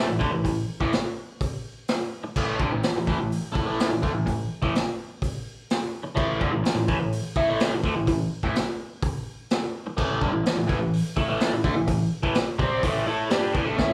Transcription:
0.07 A2 E3
0.19 D3 A3, kick
0.32 A2 E3
0.44 A2 E3, kick, open hi-hat
0.80 A2 E3, kick
0.92 snare, open hi-hat
1.41 kick, open hi-hat
1.88 snare, open hi-hat
2.24 muted overdriven electric guitar stroke
2.36 A2 E3 A3, kick, crash
2.59 G2 D3, kick
2.72 A2 E3
2.83 muted overdriven electric guitar stroke, snare, open hi-hat
2.96 A2 E3
3.07 A2 E3, kick
3.19 A2 E3
3.32 open hi-hat
3.54 A3 E4, kick
3.67 A2 E3 A3
3.80 snare, open hi-hat
3.90 A2 E3
4.02 D3 A3, kick
4.14 A2 E3
4.26 A2 E3, kick, open hi-hat
4.62 A2 E3, kick
4.75 snare, open hi-hat
5.22 kick, open hi-hat
5.70 snare, open hi-hat
6.03 muted overdriven electric guitar stroke
6.15 A2 E3 A3, kick, crash
6.40 G2 D3, kick
6.52 A2 E3
6.64 muted overdriven electric guitar stroke, snare, open hi-hat
6.75 A2 E3
6.88 A2 E3, kick
6.99 A2 E3
7.12 open hi-hat
7.36 A3 E4, kick
7.49 A2 E3 A3
7.60 snare, open hi-hat
7.73 A2 E3
7.84 D3 A3, kick
7.96 A2 E3
8.07 A2 E3, kick, open hi-hat
8.43 A2 E3, kick
8.55 snare, open hi-hat
9.03 kick, open hi-hat
9.50 snare, open hi-hat
9.87 muted overdriven electric guitar stroke
9.97 A2 E3 A3, kick, crash
10.21 G2 D3, kick
10.32 A2 E3
10.45 muted overdriven electric guitar stroke, snare, open hi-hat
10.57 A2 E3
10.68 A2 E3, kick
10.80 A2 E3
10.93 open hi-hat
11.17 A3 E4, kick
11.29 A2 E3 A3
11.40 snare, open hi-hat
11.52 A2 E3
11.64 D3 A3, kick
11.76 A2 E3
11.87 A2 E3, kick, open hi-hat
12.23 A2 E3, kick
12.34 snare, open hi-hat
12.58 C3 G3 C4, kick
12.83 A2 E3 A3, kick, open hi-hat
13.07 A3 E4 A4
13.30 G3 D4 G4, snare, open hi-hat
13.53 A2 E3, kick
13.65 D3 A3
13.76 A3 C#4 E4, kick, snare, floor tom

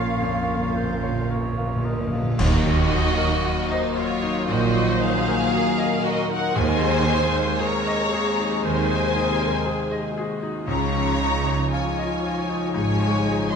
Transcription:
Already playing: A#1 A#2 F3 A#3 C#4 F4 A#4 C#5 F5
0.00 A#2
0.08 A#2
0.17 F2 A#2
0.25 A#2
0.33 A#2
0.40 A#2
0.48 A#2 A#3
0.57 A#2
0.65 A#2
0.73 A#2 C5
0.77 A#2 F4
0.89 A#2
0.97 A#2
1.03 A#2 C#5
1.12 A#2
1.20 A#2
1.28 A#2 A#4 C#5
1.36 A#2
1.44 A#2
1.52 A#2
1.58 A#2 F5
1.68 A#2
1.76 A#2
1.84 A#2 A#4 D#5
1.92 A#2
1.99 A#2
2.07 A#2
2.12 A#2 F4
2.23 A#2
2.31 A#2
2.38 D#2 D#3 F#3 A#3 F#4 D#5, concert bass drum, crash
2.64 F#3
2.92 D#4
3.17 A#4
3.45 F#4
3.70 D#4 C5 D#5
3.96 F#3 F4 C#5
4.22 D#4
4.48 A#1 A#2 F#4 C5 D#5
4.75 F#3
5.01 D#4 G#4 F5
5.28 A#4
5.53 F#4 A#4
5.78 D#5
6.04 F#4 D#5
6.30 D#4 A#4 F#5
6.56 D#2 C3 D#3 G#3 G#4 C5 G#5
6.81 G#3
7.07 D#4 C5
7.35 C5
7.59 G#4 A#4 C#5 A#5
7.87 D#5
8.12 G#4
8.39 D#4
8.63 D#2 D#3 C5 G#5
8.90 G#3
9.15 D#4 A#4
9.41 C5
9.66 G#4
9.91 D#5
10.17 F#4 G#4
10.43 D#4
10.67 C#2 C#3 F3 D#4 F4 C#5 A#5
10.94 F3
11.19 D#4
11.46 C#5
11.72 F4 C#5 G#5
11.98 D#5
12.24 F4
12.49 D#4
12.74 G#1 G#2 G#4 C#5 G#5
13.00 F3
13.25 D#4
13.50 C#5 D#5 C6

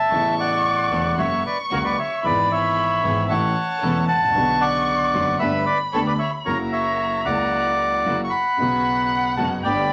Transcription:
Already playing: E5 A5
0.09 A1 A2 C#3 A3 B3 A4 C#6
0.13 E4
0.40 D5 F#5
0.90 E1 E2 C#3 A3 B3 C#4 E4 A4
1.17 F#1 F#2 C#3 F#3 A#3 C#4 F#4 C#5 E5 C#6
1.46 B4 D5
1.70 C#2 C#3 F#3 A#3 C#4 F#4 A#4 C#5
1.84 B4 D5
1.99 C#5 E5
2.23 G#1 G#2 E3 G#3 B3 E4 G#4 B4 D5 B5
2.27 G#4
2.52 C#5 E5
3.02 G#1 G#2 E3 G#3 B3 E4 G#4
3.29 A1 A2 E3 A3 C#4 E4 A4 C#5 F#5 A5
3.81 E1 E2 E3 A3 C#4 E4 A4
4.08 F#5 A5
4.15 G#1
4.22 A1
4.28 A#1
4.33 B1 B2 C#3 D3 B3 B4 C#6
4.38 F#4
4.61 D5 F#5
5.13 F#1 F#2 D3 B3 C#4 D4 F#4 B4
5.39 G1 G2 D3 A3 B3 G4 A4 B4 E5 B5
5.66 B4 D5
5.93 D2 D3 A3 B3 G4 A4 C#5
6.07 B4 D5
6.19 C#5 E5
6.45 F#1 F#2 C#3 F#3 A#3 E4 F#4 A#4 C#5 A#5
6.72 C#5 E5
7.24 C#2 C#3 F#3 A#3 E4 F#4 D5 F#5
8.04 F#1 F#2 C#3 F#3 A#3 E4 F#4
8.24 C#6
8.30 F#5 B5
8.57 B1 B2 C#3 F#3 B3 C#4 F#4 F#5
8.61 F#4
9.37 F#1 F#2 C#3 F#3 B3 C#4 F#4 F#5 A5
9.63 G1 G2 D3 A3 B3 G4 D5 G5 B5

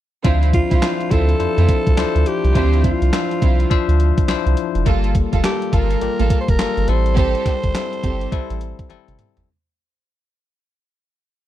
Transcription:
0.24 D2 F3 C4 D4 E4 F4 C5, kick, closed hi-hat
0.43 closed hi-hat
0.53 F4, kick, closed hi-hat
0.71 C2 C4 E4 F4, kick, closed hi-hat
0.82 F3 D4 E4 C5, snare, clap, closed hi-hat
1.01 closed hi-hat
1.10 D2 C4 E4 F4 A4, kick, closed hi-hat
1.29 closed hi-hat
1.39 F2 F3 D4 E4 C5, closed hi-hat
1.57 F2 C4 E4 F4, closed hi-hat
1.69 kick, closed hi-hat
1.87 C2, kick, closed hi-hat
1.97 D2 F3 D4 E4 C5, snare, clap, closed hi-hat
2.16 D2, closed hi-hat
2.26 G4, closed hi-hat
2.44 C2, closed hi-hat
2.55 D2 F3 C4 D4 E4 F4 C5, kick, closed hi-hat
2.73 closed hi-hat
2.84 F4, kick, closed hi-hat
3.02 C2, closed hi-hat
3.12 F3 D4 C5 E5, snare, clap, closed hi-hat
3.31 closed hi-hat
3.41 C2 C4 E4 F4, kick, closed hi-hat
3.60 closed hi-hat
3.70 D2 F3 D4 C5 E5, kick, closed hi-hat
3.89 D2, closed hi-hat
4.00 closed hi-hat
4.18 kick, closed hi-hat
4.28 C2 F3 D4 E4 C5, snare, clap, closed hi-hat
4.46 C2, closed hi-hat
4.57 closed hi-hat
4.75 F1, closed hi-hat
4.85 G1 G3 A#3 F4 A4, kick, closed hi-hat
5.04 closed hi-hat
5.15 kick, closed hi-hat
5.32 F1 A#3 F4 A4, kick, closed hi-hat
5.43 G3 A#3 F4 G4 A4, snare, clap, closed hi-hat
5.62 closed hi-hat
5.72 G1 A#3 F4 A4 A#4, kick, closed hi-hat
5.91 closed hi-hat
6.01 A1 G3 A#3 F4 G4, closed hi-hat
6.19 A1 A#3 F4 A4, closed hi-hat
6.30 kick, closed hi-hat
6.41 C5
6.48 F1 A#4, kick, closed hi-hat
6.59 G1 G3 A#3 F4 A4, snare, clap, closed hi-hat
6.77 G1, closed hi-hat
6.88 A1 G3 C4 E4 A4 C5, closed hi-hat
7.06 closed hi-hat
7.16 C4 G4 A4 C5, kick, closed hi-hat
7.35 closed hi-hat
7.46 kick, snare, closed hi-hat
7.63 G1, kick, closed hi-hat
7.74 G3 C4 E4 A4, snare, clap, closed hi-hat
7.93 closed hi-hat
8.03 G1 C4 G4 A4, kick, closed hi-hat
8.21 closed hi-hat
8.32 A1 G3 C4 E4 A4, kick, closed hi-hat
8.50 A1, closed hi-hat
8.61 closed hi-hat
8.79 kick, closed hi-hat
8.89 G1 G3 C4 E4 A4, closed hi-hat, high tom
9.08 G1, closed hi-hat, mid tom
9.19 closed hi-hat, mid tom
9.37 G1, closed hi-hat, floor tom

